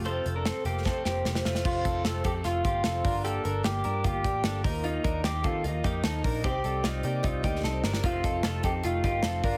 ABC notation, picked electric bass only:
X:1
M:4/4
L:1/16
Q:1/4=150
K:Fmix
V:1 name="Picked electric bass" clef=bass
F,,,2 F,,,3 z F,,,3 z F,,,2 F,,,2 F,,,2 | F,,,2 F,,,2 F,,,2 F,,2 F,,,2 G,,,2 F,,,2 G,,,2- | G,,,2 G,,,2 G,,,2 G,,2 G,,,2 A,,,2 G,,,2 E,,2- | E,,2 E,,2 E,,2 E,2 E,,2 F,,2 E,,2 B,,,2 |
C,,2 C,,2 C,,2 C,2 C,,2 D,,2 C,,2 G,,,2 | F,,,2 F,,,2 F,,,2 F,,2 F,,,2 G,,,2 F,,,2 G,,,2 |]